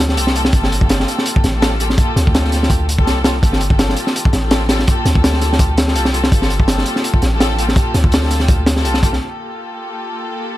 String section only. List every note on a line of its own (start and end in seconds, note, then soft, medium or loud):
0.09 0.34 A#3 loud
0.09 0.34 F4 medium
0.09 0.34 G4 medium
0.09 0.34 A4 loud
0.35 0.44 A#3 loud
0.35 0.44 F4 medium
0.35 0.44 G4 medium
0.35 0.44 A4 loud
0.54 0.79 A#3 medium
0.54 0.79 F4 medium
0.54 0.79 G4 medium
0.54 0.79 A4 loud
0.81 1.42 A#3 medium
0.81 1.42 F4 medium
0.81 1.42 G4 medium
0.81 1.42 A4 loud
1.54 1.78 A#3 loud
1.54 1.78 F4 medium
1.54 1.78 G4 medium
1.54 1.78 A4 loud
1.80 1.88 A#3 loud
1.80 1.88 F4 medium
1.80 1.88 G4 medium
1.80 1.88 A4 loud
1.98 2.24 A#3 medium
1.98 2.24 F4 medium
1.98 2.24 G4 medium
1.98 2.24 A4 medium
2.26 2.86 A#3 medium
2.26 2.86 F4 medium
2.26 2.86 G4 medium
2.26 2.86 A4 loud
2.98 3.23 A#3 loud
2.98 3.23 F4 medium
2.98 3.23 G4 medium
2.98 3.23 A4 loud
3.24 3.33 A#3 medium
3.24 3.33 F4 medium
3.24 3.33 G4 medium
3.24 3.33 A4 loud
3.43 3.68 A#3 medium
3.43 3.68 F4 medium
3.43 3.68 G4 medium
3.43 3.68 A4 loud
3.71 4.31 A#3 medium
3.71 4.31 F4 medium
3.71 4.31 G4 medium
3.71 4.31 A4 medium
4.43 4.67 A#3 loud
4.43 4.67 F4 medium
4.43 4.67 G4 medium
4.43 4.67 A4 loud
4.69 4.77 A#3 medium
4.69 4.77 F4 medium
4.69 4.77 G4 medium
4.69 4.77 A4 loud
4.87 5.13 A#3 medium
4.87 5.13 F4 medium
4.87 5.13 G4 medium
4.87 5.13 A4 loud
5.15 5.76 A#3 medium
5.15 5.76 F4 medium
5.15 5.76 G4 medium
5.15 5.76 A4 loud
5.88 6.12 A#3 loud
5.88 6.12 F4 medium
5.88 6.12 G4 medium
5.88 6.12 A4 loud
6.14 6.22 A#3 loud
6.14 6.22 F4 medium
6.14 6.22 G4 medium
6.14 6.22 A4 loud
6.32 6.57 A#3 medium
6.32 6.58 F4 medium
6.32 6.57 G4 medium
6.32 6.57 A4 loud
6.60 7.20 A#3 medium
6.60 7.20 F4 medium
6.60 7.20 G4 medium
6.60 7.20 A4 loud
7.32 7.56 A#3 loud
7.32 7.56 F4 medium
7.32 7.56 G4 medium
7.32 7.56 A4 loud
7.58 7.66 A#3 loud
7.58 7.66 F4 medium
7.58 7.66 G4 medium
7.58 7.66 A4 loud
7.77 8.02 A#3 medium
7.77 8.02 F4 medium
7.77 8.02 G4 medium
7.77 8.02 A4 loud
8.04 8.65 A#3 medium
8.04 8.65 F4 medium
8.04 8.65 G4 medium
8.04 8.65 A4 loud
8.77 9.01 A#3 loud
8.77 9.01 F4 medium
8.77 9.01 G4 medium
8.77 9.01 A4 loud
9.03 9.11 A#3 loud
9.03 9.11 F4 medium
9.03 9.11 G4 medium
9.03 9.11 A4 loud
9.21 10.57 A#3 medium
9.21 10.57 F4 medium
9.21 10.57 G4 medium
9.21 10.57 A4 medium